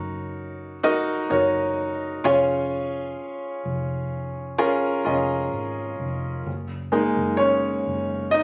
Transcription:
Already playing: F#1 D#4 F#4 A#4 C#5
0.83 D#4 F#4 A#4 D#5
1.30 F#1 D#4 F#4 A#4 C#5
2.24 F1 C#4 F4 G#4 C#5
3.65 F1
4.58 C#4 F4 G#4 A#4
5.05 F1 C#4 F4 G#4 D#5
5.52 G#1
5.99 F1
6.46 F#1
6.92 G#3 A#3 D#4
7.17 F#1
7.37 C#4 C#5
7.87 F#1
8.31 D#4 D#5

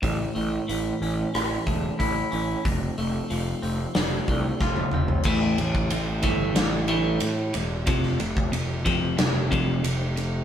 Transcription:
0.02 A1 A2, kick, open hi-hat
0.35 A1 A3, open hi-hat
0.68 A1 E3, open hi-hat
1.02 A1 C#4, open hi-hat
1.34 A1 E3, cross-stick, open hi-hat
1.66 E1 A3, kick, open hi-hat
1.99 A1 E4, kick, open hi-hat
2.31 A1 C#4, open hi-hat
2.65 F1 F2, kick, open hi-hat
2.98 F1 A3, open hi-hat
3.30 F1 F3, open hi-hat
3.62 F1 C4, open hi-hat
3.95 F1 F3, snare, open hi-hat
4.28 C2 A3, kick, open hi-hat
4.60 F1 F4, kick, snare
4.76 high tom
4.91 F1 C4, mid tom
5.08 floor tom
5.23 A1 A2 E3 A3, kick, crash
5.58 A1 A2 E3, ride
5.75 kick
5.90 A1 A2 E3, ride
6.22 G1 A2 E3 A3, kick, ride
6.55 A1 A2 E3, snare, ride
6.88 A2 E3 A3, ride
7.20 A2 E3, ride
7.53 E1 A2 E3, ride
7.86 F1 F2 C3 F3, kick, ride
8.03 snare
8.20 F1 F2 C3, ride
8.37 kick
8.52 F1 F2 C3, ride
8.85 F1 F2 C3 F3, kick, ride
9.17 F1 F2 C3, snare, ride
9.51 F1 F2 C3 F3, kick, ride
9.84 F1 F2 C3, ride
10.16 F2 C3, ride

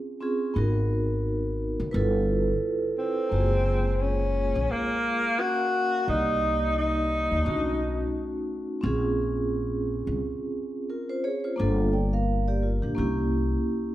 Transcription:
Already playing: C4 C#4 F4 G#4
0.20 C4 C#4 F4 G#4
0.54 G#1 B3 D#4 F#4
0.58 A#4
1.80 B1
1.91 G1 E4 F4 B4
1.96 A4
2.98 C4
3.29 F#1 G#3 A#3 F4
3.34 F#4
3.40 G#4
3.96 C4
4.02 C#4
4.55 A#1
4.71 A#3
5.37 A#3 C#4 F#4 A#4 F5
6.05 C2 A#3 D#4 D5
6.09 D#4 G4
6.78 D#4
7.31 D#2
7.43 B1 A3 C#4 D4
7.48 F#4
7.52 D#4
8.81 A#1 C4 C#4 F4
8.86 G#4
10.07 C2
10.90 F4 A#4
11.10 F4 C5
11.24 G#4 C#5
11.44 F4 C5
11.56 G1 A#3 D4 F4
11.61 A4
11.93 D5 G5
12.13 A#4 F5
12.48 G4 D5
12.62 F4 A#4
12.82 A#1 D4 G4
12.95 C2 A#3 C#4 E4
12.99 G4

